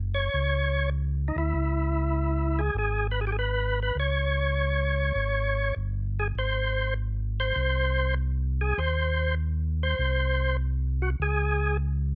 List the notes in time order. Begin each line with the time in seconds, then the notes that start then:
Already playing: F#1
0.14 C#5
0.34 C#2
1.28 D#4
1.36 D2 E4
1.54 C#2
2.59 G#4
2.74 G#1
2.78 G#4
3.11 B4
3.21 G#4
3.27 G4
3.32 G#4
3.39 B4
3.83 B4
3.95 C#2
4.00 C#5
5.15 G#1
5.76 G1
6.19 G#4
6.35 G#1 C5
7.40 C5
7.56 C2
8.61 G#4
8.78 D#2 C5
9.83 C5
9.99 C2
11.02 F#4
11.20 C#2 G#4